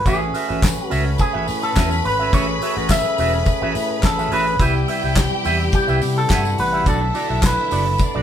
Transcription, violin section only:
0.06 4.56 B4 loud
0.06 4.56 B5 loud
4.60 6.27 G4 loud
4.60 6.27 G5 loud
6.30 6.85 F#4 medium
6.30 6.86 F#5 medium
6.86 7.97 E4 medium
6.86 7.98 E5 loud
8.00 8.22 D4 medium
8.00 8.22 D5 medium

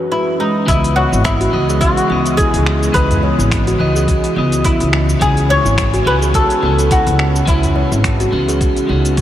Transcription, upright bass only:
0.68 1.02 C#2 medium
1.12 1.45 G#1 medium
1.53 1.87 C#2 medium
2.10 2.44 C#2 medium
2.54 2.87 C#2 loud
2.95 3.29 C#2 loud
3.39 3.72 G#1 medium
3.80 4.14 C#2 medium
4.36 4.70 C#2 medium
4.80 5.13 C#2 loud
5.21 5.55 C#2 loud
5.65 5.98 G#1 medium
6.06 6.40 C#2 loud
6.63 6.97 C#2 medium
7.07 7.40 C#2 loud
7.47 7.82 C#2 loud
7.92 8.25 G#1 medium
8.33 8.67 C#2 medium
8.89 9.21 C#2 medium

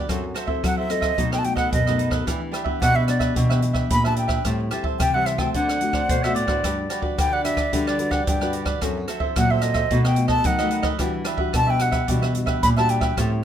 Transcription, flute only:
0.66 0.78 F#5 medium
0.79 0.93 E5 medium
0.91 1.32 D#5 medium
1.33 1.40 G5 medium
1.39 1.46 A5 medium
1.45 1.56 G5 loud
1.57 1.71 F#5 medium
1.73 2.11 D#5 medium
2.81 2.97 F#5 loud
2.96 3.07 E5 medium
3.08 3.34 D5 medium
3.91 4.04 B5 loud
4.06 4.17 A5 medium
4.18 4.43 G5 medium
5.00 5.16 G5 loud
5.14 5.28 F#5 loud
5.26 5.40 E5 medium
5.39 5.54 G5 medium
5.55 6.33 F#5 medium
7.19 7.35 G5 loud
7.33 7.44 F#5 medium
7.44 7.88 E5 medium
7.87 8.12 D5 medium
8.11 8.26 F#5 medium
8.27 8.65 G5 medium
9.37 9.52 F#5 medium
9.51 9.64 E5 medium
9.62 10.04 D#5 medium
10.05 10.29 G5 loud
10.29 10.48 A5 loud
10.46 10.86 F#5 medium
11.56 11.72 A5 loud
11.70 11.83 G5 loud
11.82 12.09 F#5 medium
12.63 12.69 B5 loud
12.78 12.91 A5 loud
12.90 13.17 G5 medium

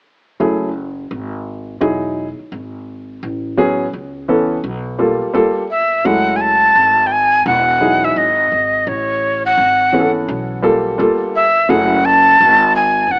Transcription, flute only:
5.71 6.07 E5 medium
6.06 6.38 F#5 medium
6.36 6.43 G#5 medium
6.41 7.08 A5 loud
7.07 7.14 G5 medium
7.12 7.46 G#5 medium
7.47 8.06 F#5 loud
8.04 8.19 E5 medium
8.18 8.90 D#5 medium
8.88 9.45 C#5 medium
9.46 10.12 F#5 medium
11.36 11.71 E5 medium
11.70 12.07 F#5 medium
12.05 12.75 A5 loud
12.76 13.13 G#5 loud
13.11 13.19 F#5 loud

